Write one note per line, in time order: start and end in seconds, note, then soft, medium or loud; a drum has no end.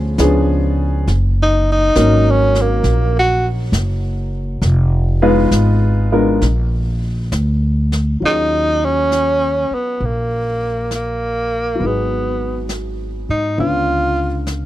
0.00 0.16 D2 medium
0.00 0.19 F3 medium
0.00 0.20 B3 medium
0.00 0.20 C#4 medium
0.00 0.20 D4 medium
0.00 0.20 G#4 medium
0.18 1.05 C#2 medium
0.18 1.08 F3 medium
0.18 1.08 B3 medium
0.18 1.08 C#4 medium
0.18 1.08 D4 medium
0.18 1.08 G#4 medium
0.18 snare medium
0.18 hi-hat pedal medium
1.07 1.94 F#1 medium
1.07 brush sweep soft
1.07 snare soft
1.43 1.67 D#4 medium
1.72 2.32 D#4 medium
1.95 2.82 G#1 medium
1.95 2.49 F#3 medium
1.95 2.49 A#3 medium
1.95 2.49 C#4 medium
1.95 2.49 D#4 medium
1.95 2.49 A#4 medium
1.95 snare medium
1.95 hi-hat pedal medium
2.31 2.63 C#4 medium
2.55 snare soft
2.61 3.17 A#3 medium
2.83 3.70 A#1 medium
2.83 brush sweep soft
2.83 snare soft
3.19 3.47 F#4 medium
3.72 4.59 F#1 medium
3.72 snare medium
3.72 hi-hat pedal medium
4.62 5.48 F1 medium
4.62 brush sweep soft
4.62 snare soft
5.22 5.49 G#3 medium
5.22 5.49 B3 medium
5.22 5.49 D#4 medium
5.22 5.49 F4 medium
5.22 5.49 B4 loud
5.51 6.38 G#1 medium
5.51 snare medium
5.51 hi-hat pedal medium
6.12 6.39 G#3 medium
6.12 6.39 B3 medium
6.12 6.39 D4 medium
6.12 6.39 F4 medium
6.12 6.39 A#4 medium
6.41 7.29 A#1 medium
6.41 brush sweep soft
6.41 snare soft
7.32 8.19 D2 medium
7.32 snare medium
7.32 hi-hat pedal medium
7.92 snare soft
8.20 9.67 D#2 medium
8.20 11.74 F#3 soft
8.20 11.80 C#4 soft
8.20 11.81 F4 soft
8.20 brush sweep soft
8.25 8.87 D#4 medium
8.25 11.81 G#4 soft
8.85 9.76 C#4 medium
9.12 snare soft
9.12 hi-hat pedal soft
9.71 10.07 B3 medium
9.71 muted upright bass stroke soft
10.00 11.75 A#1 medium
10.00 brush sweep soft
10.05 10.92 A#3 medium
10.91 snare soft
10.91 hi-hat pedal soft
10.95 11.88 A#3 medium
11.75 13.55 F#3 soft
11.75 13.56 B3 soft
11.80 13.24 G#1 medium
11.80 13.59 D#4 soft
11.80 brush sweep soft
11.86 12.72 B3 medium
11.86 13.61 G#4 soft
12.69 snare soft
12.69 hi-hat pedal soft
13.29 13.56 G#2 medium
13.29 13.57 D#4 medium
13.57 14.66 C#2 medium
13.57 14.66 D3 soft
13.57 14.66 B3 soft
13.57 14.66 C#4 soft
13.57 14.66 F4 soft
13.57 14.44 F4 medium
13.57 brush sweep soft
14.47 snare soft
14.47 hi-hat pedal medium